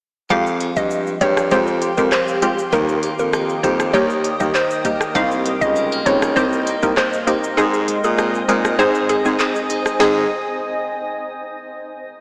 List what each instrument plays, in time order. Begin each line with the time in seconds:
0.30 clean electric guitar F2, baritone saxophone F2, synth stab G#3 C4 F4 G4, ambient pad G4 F5 G5 C6, synth pluck F5, kick, shaker
0.46 shaker
0.60 clean electric guitar G#3, closed hi-hat, shaker
0.76 baritone saxophone G2, synth pluck D#5, kick, shaker
0.91 shaker
1.07 shaker
1.21 baritone saxophone G2, synth stab G#3 C4 F4 G4, clean electric guitar G4, synth pluck C#5, kick, closed hi-hat, shaker
1.37 cross-stick, shaker
1.51 baritone saxophone F2, synth stab G#3 C4 F4 G4, clean electric guitar C4, synth pluck C5, kick, shaker
1.67 shaker
1.81 clean electric guitar G4, closed hi-hat, shaker
1.97 baritone saxophone F2, synth stab G#3 C4 F4 G4, synth pluck A#4, kick, shaker
2.12 clean electric guitar C4, synth pluck C5, cross-stick, clap, shaker
2.28 shaker
2.42 synth stab G#3 C4 F4 G4, clean electric guitar G4, closed hi-hat, shaker
2.58 shaker
2.72 baritone saxophone D#2, clean electric guitar D#3, synth stab G3 A#3 D#4 G4, ambient pad A#4 D#5 D#6, synth pluck A#4, kick, shaker
2.89 shaker
3.03 clean electric guitar A#3, closed hi-hat, shaker
3.19 baritone saxophone F2, synth pluck A#4, shaker
3.33 clean electric guitar D#4, cross-stick, shaker
3.49 shaker
3.63 baritone saxophone F2, synth stab G3 A#3 D#4 G4, clean electric guitar G4, synth pluck C5, kick, closed hi-hat, shaker
3.80 cross-stick, shaker
3.93 baritone saxophone D#2, synth stab G3 A#3 D#4 G4, clean electric guitar D#4, synth pluck C#5, kick, shaker
4.10 shaker
4.24 clean electric guitar G4, closed hi-hat, shaker
4.40 baritone saxophone D#2, synth stab G3 A#3 D#4 G4, synth pluck D#5, kick, shaker
4.54 clean electric guitar D#4, synth pluck C5, clap, shaker
4.71 shaker
4.85 synth stab G3 A#3 D#4 G4, clean electric guitar G4, kick, closed hi-hat, shaker
5.01 cross-stick, shaker
5.15 baritone saxophone C2, clean electric guitar C3, synth stab A#3 C4 D#4 G4, ambient pad D#5 C6, synth pluck F5, kick, shaker
5.31 shaker
5.46 clean electric guitar G3, closed hi-hat, shaker
5.61 baritone saxophone C#2, synth pluck D#5, kick, shaker
5.76 clean electric guitar G#3, shaker
5.92 clean electric guitar A#3, shaker
6.06 baritone saxophone C#2, synth stab A#3 C4 D#4 G4, clean electric guitar D#4, synth pluck C#5, kick, closed hi-hat, shaker
6.22 cross-stick, shaker
6.36 baritone saxophone C2, synth stab A#3 C4 D#4 G4, clean electric guitar A#3, synth pluck C5, kick, shaker
6.52 shaker
6.67 clean electric guitar D#4, closed hi-hat, shaker
6.83 baritone saxophone C2, synth stab A#3 C4 D#4 G4, synth pluck A#4, kick, shaker
6.97 clean electric guitar A#3, synth pluck C5, cross-stick, clap, shaker
7.13 shaker
7.27 synth stab A#3 C4 D#4 G4, clean electric guitar D#4, closed hi-hat, shaker
7.43 shaker
7.57 baritone saxophone G#2, clean electric guitar G#2, synth stab G#3 C4 D#4 G#4, synth pluck G#4, ambient pad C5 G#5 D#6, shaker
7.73 shaker
7.88 clean electric guitar G#3, closed hi-hat, shaker
8.04 baritone saxophone A#2, synth pluck G#4, shaker
8.18 clean electric guitar C4, cross-stick, shaker
8.34 shaker
8.48 baritone saxophone A#2, synth stab G#3 C4 D#4 G#4, clean electric guitar D#4, synth pluck A#4, closed hi-hat, shaker
8.64 cross-stick, shaker
8.79 baritone saxophone G#2, synth stab G#3 C4 D#4 G#4, clean electric guitar C4, synth pluck C5, shaker
8.95 shaker
9.09 clean electric guitar D#4, synth pluck G#4, closed hi-hat, shaker
9.25 baritone saxophone G#2, synth stab G#3 C4 D#4 G#4, shaker
9.39 clean electric guitar C4, synth pluck G#4, clap, shaker
9.55 shaker
9.70 clean electric guitar D#4, closed hi-hat, shaker
9.85 cross-stick, shaker
9.99 clean electric guitar G#2 D#3 G#3 C4 D#4, baritone saxophone G#2, synth stab G#3 C4 D#4 G#4, synth pluck G#4, snare, shaker